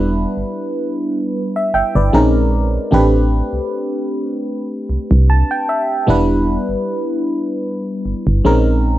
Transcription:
0, 0, Header, 1, 3, 480
1, 0, Start_track
1, 0, Key_signature, 0, "minor"
1, 0, Tempo, 789474
1, 1776, Time_signature, 4, 2, 24, 8
1, 5463, End_track
2, 0, Start_track
2, 0, Title_t, "FM electric piano"
2, 0, Program_c, 0, 5
2, 0, Control_c, 0, 64, 127
2, 0, Note_on_c, 0, 55, 73
2, 0, Note_on_c, 0, 59, 66
2, 0, Note_on_c, 0, 62, 67
2, 0, Note_on_c, 0, 64, 70
2, 0, Note_on_c, 0, 71, 81
2, 803, Note_off_c, 0, 71, 0
2, 949, Note_on_c, 0, 76, 60
2, 1052, Note_off_c, 0, 76, 0
2, 1058, Note_on_c, 0, 79, 69
2, 1062, Note_on_c, 0, 76, 63
2, 1180, Note_off_c, 0, 79, 0
2, 1182, Note_off_c, 0, 76, 0
2, 1188, Note_on_c, 0, 74, 60
2, 1192, Note_on_c, 0, 71, 49
2, 1268, Note_off_c, 0, 55, 0
2, 1270, Note_off_c, 0, 59, 0
2, 1273, Note_off_c, 0, 62, 0
2, 1275, Note_off_c, 0, 64, 0
2, 1294, Note_on_c, 0, 56, 75
2, 1296, Note_on_c, 0, 60, 65
2, 1299, Note_on_c, 0, 61, 66
2, 1302, Note_on_c, 0, 63, 66
2, 1304, Control_c, 0, 64, 0
2, 1304, Note_on_c, 0, 70, 82
2, 1412, Control_c, 0, 64, 127
2, 1415, Note_off_c, 0, 74, 0
2, 1417, Note_off_c, 0, 71, 0
2, 1767, Note_off_c, 0, 60, 0
2, 1769, Note_on_c, 0, 57, 74
2, 1774, Note_on_c, 0, 60, 68
2, 1775, Note_off_c, 0, 56, 0
2, 1777, Note_off_c, 0, 61, 0
2, 1779, Note_off_c, 0, 63, 0
2, 1779, Note_on_c, 0, 62, 68
2, 1780, Note_off_c, 0, 70, 0
2, 1783, Note_on_c, 0, 67, 69
2, 1784, Control_c, 0, 64, 0
2, 1788, Note_on_c, 0, 71, 82
2, 1893, Control_c, 0, 64, 127
2, 3220, Note_on_c, 0, 81, 68
2, 3339, Note_off_c, 0, 81, 0
2, 3349, Note_on_c, 0, 79, 69
2, 3450, Note_off_c, 0, 79, 0
2, 3460, Note_on_c, 0, 76, 70
2, 3668, Note_off_c, 0, 57, 0
2, 3670, Note_off_c, 0, 60, 0
2, 3673, Note_off_c, 0, 62, 0
2, 3675, Note_off_c, 0, 67, 0
2, 3678, Note_off_c, 0, 71, 0
2, 3681, Note_off_c, 0, 76, 0
2, 3689, Note_on_c, 0, 55, 75
2, 3693, Note_on_c, 0, 59, 70
2, 3699, Note_on_c, 0, 62, 70
2, 3704, Control_c, 0, 64, 0
2, 3704, Note_on_c, 0, 64, 69
2, 3709, Note_on_c, 0, 71, 83
2, 3809, Control_c, 0, 64, 127
2, 5108, Note_off_c, 0, 55, 0
2, 5110, Note_off_c, 0, 59, 0
2, 5113, Note_off_c, 0, 62, 0
2, 5115, Note_off_c, 0, 64, 0
2, 5118, Note_off_c, 0, 71, 0
2, 5135, Note_on_c, 0, 56, 72
2, 5137, Note_on_c, 0, 60, 69
2, 5140, Note_on_c, 0, 61, 68
2, 5142, Note_on_c, 0, 63, 69
2, 5144, Control_c, 0, 64, 0
2, 5144, Note_on_c, 0, 70, 83
2, 5233, Control_c, 0, 64, 127
2, 5463, Note_off_c, 0, 56, 0
2, 5463, Note_off_c, 0, 60, 0
2, 5463, Note_off_c, 0, 61, 0
2, 5463, Note_off_c, 0, 63, 0
2, 5463, Note_off_c, 0, 70, 0
2, 5463, End_track
3, 0, Start_track
3, 0, Title_t, "FM bass"
3, 0, Program_c, 1, 39
3, 0, Note_on_c, 1, 28, 100
3, 160, Note_off_c, 1, 28, 0
3, 227, Note_on_c, 1, 31, 46
3, 270, Note_off_c, 1, 31, 0
3, 1058, Note_on_c, 1, 31, 49
3, 1109, Note_off_c, 1, 31, 0
3, 1187, Note_on_c, 1, 31, 87
3, 1277, Note_off_c, 1, 31, 0
3, 1297, Note_on_c, 1, 34, 85
3, 1690, Note_off_c, 1, 34, 0
3, 1778, Note_on_c, 1, 33, 109
3, 2080, Note_off_c, 1, 33, 0
3, 2146, Note_on_c, 1, 36, 46
3, 2190, Note_off_c, 1, 36, 0
3, 2976, Note_on_c, 1, 36, 50
3, 3028, Note_off_c, 1, 36, 0
3, 3106, Note_on_c, 1, 36, 95
3, 3303, Note_off_c, 1, 36, 0
3, 3697, Note_on_c, 1, 28, 98
3, 3999, Note_off_c, 1, 28, 0
3, 4067, Note_on_c, 1, 31, 44
3, 4110, Note_off_c, 1, 31, 0
3, 4897, Note_on_c, 1, 31, 48
3, 4949, Note_off_c, 1, 31, 0
3, 5027, Note_on_c, 1, 31, 83
3, 5117, Note_off_c, 1, 31, 0
3, 5137, Note_on_c, 1, 34, 85
3, 5463, Note_off_c, 1, 34, 0
3, 5463, End_track
0, 0, End_of_file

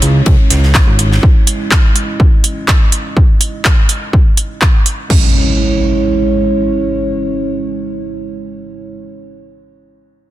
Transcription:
0, 0, Header, 1, 5, 480
1, 0, Start_track
1, 0, Key_signature, 4, "minor"
1, 0, Tempo, 483871
1, 1220, Time_signature, 4, 2, 24, 8
1, 10223, End_track
2, 0, Start_track
2, 0, Title_t, "Analog synth pad"
2, 0, Program_c, 0, 89
2, 0, Note_on_c, 0, 56, 80
2, 0, Note_on_c, 0, 61, 74
2, 0, Note_on_c, 0, 64, 74
2, 0, Note_on_c, 0, 73, 88
2, 1181, Note_off_c, 0, 73, 0
2, 1219, Note_on_c, 0, 75, 89
2, 5020, Note_off_c, 0, 56, 0
2, 5020, Note_off_c, 0, 61, 0
2, 5020, Note_off_c, 0, 64, 0
2, 5021, Note_off_c, 0, 75, 0
2, 5060, Note_on_c, 0, 61, 69
2, 5060, Note_on_c, 0, 64, 71
2, 5061, Note_on_c, 0, 56, 77
2, 5061, Note_on_c, 0, 73, 86
2, 8876, Note_off_c, 0, 61, 0
2, 8876, Note_off_c, 0, 64, 0
2, 8877, Note_off_c, 0, 56, 0
2, 8877, Note_off_c, 0, 73, 0
2, 10223, End_track
3, 0, Start_track
3, 0, Title_t, "Analog synth bass"
3, 0, Program_c, 1, 38
3, 21, Note_on_c, 1, 37, 91
3, 215, Note_off_c, 1, 37, 0
3, 261, Note_on_c, 1, 37, 105
3, 360, Note_off_c, 1, 37, 0
3, 502, Note_on_c, 1, 37, 84
3, 826, Note_off_c, 1, 37, 0
3, 865, Note_on_c, 1, 32, 83
3, 1184, Note_off_c, 1, 32, 0
3, 10223, End_track
4, 0, Start_track
4, 0, Title_t, "Impact"
4, 0, Program_c, 2, 103
4, 5060, Note_on_c, 2, 60, 66
4, 8915, Note_off_c, 2, 60, 0
4, 10223, End_track
5, 0, Start_track
5, 0, Title_t, "Drums"
5, 18, Note_on_c, 9, 51, 65
5, 21, Note_on_c, 9, 42, 89
5, 117, Note_off_c, 9, 51, 0
5, 120, Note_off_c, 9, 42, 0
5, 258, Note_on_c, 9, 51, 96
5, 261, Note_on_c, 9, 36, 120
5, 357, Note_off_c, 9, 51, 0
5, 360, Note_off_c, 9, 36, 0
5, 501, Note_on_c, 9, 42, 107
5, 502, Note_on_c, 9, 38, 59
5, 503, Note_on_c, 9, 51, 71
5, 600, Note_off_c, 9, 42, 0
5, 602, Note_off_c, 9, 38, 0
5, 602, Note_off_c, 9, 51, 0
5, 624, Note_on_c, 9, 38, 45
5, 723, Note_off_c, 9, 38, 0
5, 737, Note_on_c, 9, 38, 106
5, 739, Note_on_c, 9, 51, 74
5, 741, Note_on_c, 9, 36, 111
5, 741, Note_on_c, 9, 39, 122
5, 836, Note_off_c, 9, 38, 0
5, 839, Note_off_c, 9, 51, 0
5, 840, Note_off_c, 9, 36, 0
5, 840, Note_off_c, 9, 39, 0
5, 981, Note_on_c, 9, 42, 93
5, 982, Note_on_c, 9, 51, 69
5, 1080, Note_off_c, 9, 42, 0
5, 1081, Note_off_c, 9, 51, 0
5, 1107, Note_on_c, 9, 38, 52
5, 1207, Note_off_c, 9, 38, 0
5, 1221, Note_on_c, 9, 36, 122
5, 1320, Note_off_c, 9, 36, 0
5, 1460, Note_on_c, 9, 42, 109
5, 1559, Note_off_c, 9, 42, 0
5, 1700, Note_on_c, 9, 36, 121
5, 1700, Note_on_c, 9, 39, 120
5, 1799, Note_off_c, 9, 39, 0
5, 1800, Note_off_c, 9, 36, 0
5, 1940, Note_on_c, 9, 42, 89
5, 2039, Note_off_c, 9, 42, 0
5, 2180, Note_on_c, 9, 36, 118
5, 2280, Note_off_c, 9, 36, 0
5, 2420, Note_on_c, 9, 42, 102
5, 2519, Note_off_c, 9, 42, 0
5, 2660, Note_on_c, 9, 36, 119
5, 2660, Note_on_c, 9, 39, 112
5, 2759, Note_off_c, 9, 39, 0
5, 2760, Note_off_c, 9, 36, 0
5, 2899, Note_on_c, 9, 42, 90
5, 2999, Note_off_c, 9, 42, 0
5, 3141, Note_on_c, 9, 36, 119
5, 3240, Note_off_c, 9, 36, 0
5, 3379, Note_on_c, 9, 42, 103
5, 3479, Note_off_c, 9, 42, 0
5, 3619, Note_on_c, 9, 39, 116
5, 3620, Note_on_c, 9, 36, 120
5, 3718, Note_off_c, 9, 39, 0
5, 3719, Note_off_c, 9, 36, 0
5, 3859, Note_on_c, 9, 42, 84
5, 3959, Note_off_c, 9, 42, 0
5, 4100, Note_on_c, 9, 36, 112
5, 4199, Note_off_c, 9, 36, 0
5, 4339, Note_on_c, 9, 42, 100
5, 4438, Note_off_c, 9, 42, 0
5, 4579, Note_on_c, 9, 39, 114
5, 4580, Note_on_c, 9, 36, 109
5, 4678, Note_off_c, 9, 39, 0
5, 4679, Note_off_c, 9, 36, 0
5, 4820, Note_on_c, 9, 42, 87
5, 4919, Note_off_c, 9, 42, 0
5, 5060, Note_on_c, 9, 36, 94
5, 5060, Note_on_c, 9, 49, 80
5, 5159, Note_off_c, 9, 36, 0
5, 5159, Note_off_c, 9, 49, 0
5, 10223, End_track
0, 0, End_of_file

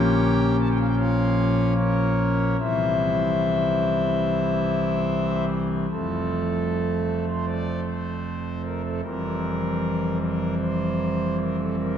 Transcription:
0, 0, Header, 1, 2, 480
1, 0, Start_track
1, 0, Key_signature, -1, "major"
1, 0, Tempo, 788436
1, 1074, Tempo, 823045
1, 1558, Time_signature, 4, 2, 24, 8
1, 3954, Tempo, 782269
1, 7192, End_track
2, 0, Start_track
2, 0, Title_t, "Pipe organ"
2, 0, Program_c, 0, 19
2, 0, Note_on_c, 0, 34, 79
2, 0, Note_on_c, 0, 46, 76
2, 0, Note_on_c, 0, 53, 59
2, 0, Note_on_c, 0, 58, 62
2, 0, Note_on_c, 0, 61, 62
2, 0, Note_on_c, 0, 67, 104
2, 0, Note_on_c, 0, 73, 109
2, 0, Note_on_c, 0, 79, 127
2, 343, Note_off_c, 0, 79, 0
2, 344, Note_off_c, 0, 67, 0
2, 345, Note_off_c, 0, 73, 0
2, 368, Note_on_c, 0, 81, 116
2, 414, Note_off_c, 0, 81, 0
2, 431, Note_on_c, 0, 79, 115
2, 474, Note_off_c, 0, 79, 0
2, 485, Note_on_c, 0, 77, 111
2, 527, Note_on_c, 0, 79, 104
2, 529, Note_off_c, 0, 77, 0
2, 577, Note_off_c, 0, 79, 0
2, 581, Note_on_c, 0, 73, 86
2, 584, Note_on_c, 0, 65, 89
2, 584, Note_on_c, 0, 77, 122
2, 1054, Note_off_c, 0, 61, 0
2, 1056, Note_off_c, 0, 73, 0
2, 1057, Note_off_c, 0, 65, 0
2, 1057, Note_off_c, 0, 77, 0
2, 1066, Note_on_c, 0, 61, 74
2, 1069, Note_on_c, 0, 73, 101
2, 1073, Note_on_c, 0, 70, 75
2, 1531, Note_off_c, 0, 34, 0
2, 1531, Note_off_c, 0, 46, 0
2, 1532, Note_off_c, 0, 53, 0
2, 1532, Note_off_c, 0, 58, 0
2, 1539, Note_off_c, 0, 61, 0
2, 1541, Note_off_c, 0, 73, 0
2, 1543, Note_off_c, 0, 70, 0
2, 1554, Note_on_c, 0, 48, 61
2, 1554, Note_on_c, 0, 55, 52
2, 1555, Note_on_c, 0, 76, 97
2, 1557, Note_on_c, 0, 52, 49
2, 1557, Note_on_c, 0, 60, 49
2, 1558, Note_on_c, 0, 36, 58
2, 1558, Note_on_c, 0, 72, 76
2, 1559, Note_on_c, 0, 64, 78
2, 3223, Note_off_c, 0, 76, 0
2, 3225, Note_off_c, 0, 64, 0
2, 3225, Note_off_c, 0, 72, 0
2, 3463, Note_off_c, 0, 48, 0
2, 3463, Note_off_c, 0, 55, 0
2, 3464, Note_off_c, 0, 52, 0
2, 3464, Note_off_c, 0, 60, 0
2, 3465, Note_off_c, 0, 36, 0
2, 3487, Note_on_c, 0, 53, 47
2, 3487, Note_on_c, 0, 69, 99
2, 3490, Note_on_c, 0, 57, 51
2, 3491, Note_on_c, 0, 41, 59
2, 3492, Note_on_c, 0, 29, 55
2, 3492, Note_on_c, 0, 60, 48
2, 4292, Note_off_c, 0, 69, 0
2, 4312, Note_on_c, 0, 72, 82
2, 4416, Note_off_c, 0, 72, 0
2, 4423, Note_on_c, 0, 74, 108
2, 4629, Note_off_c, 0, 74, 0
2, 4665, Note_on_c, 0, 72, 77
2, 5131, Note_off_c, 0, 72, 0
2, 5147, Note_on_c, 0, 70, 88
2, 5252, Note_off_c, 0, 70, 0
2, 5261, Note_on_c, 0, 69, 84
2, 5369, Note_off_c, 0, 53, 0
2, 5369, Note_off_c, 0, 69, 0
2, 5370, Note_off_c, 0, 57, 0
2, 5371, Note_off_c, 0, 29, 0
2, 5371, Note_off_c, 0, 41, 0
2, 5371, Note_off_c, 0, 60, 0
2, 5383, Note_on_c, 0, 60, 52
2, 5383, Note_on_c, 0, 70, 104
2, 5384, Note_on_c, 0, 52, 49
2, 5384, Note_on_c, 0, 55, 51
2, 5385, Note_on_c, 0, 41, 58
2, 5386, Note_on_c, 0, 29, 59
2, 6087, Note_off_c, 0, 70, 0
2, 6105, Note_on_c, 0, 70, 99
2, 6313, Note_off_c, 0, 70, 0
2, 6344, Note_on_c, 0, 72, 107
2, 6816, Note_off_c, 0, 72, 0
2, 6831, Note_on_c, 0, 70, 99
2, 6935, Note_off_c, 0, 70, 0
2, 6953, Note_on_c, 0, 69, 88
2, 7056, Note_off_c, 0, 69, 0
2, 7079, Note_on_c, 0, 70, 98
2, 7192, Note_off_c, 0, 29, 0
2, 7192, Note_off_c, 0, 41, 0
2, 7192, Note_off_c, 0, 52, 0
2, 7192, Note_off_c, 0, 55, 0
2, 7192, Note_off_c, 0, 60, 0
2, 7192, Note_off_c, 0, 70, 0
2, 7192, End_track
0, 0, End_of_file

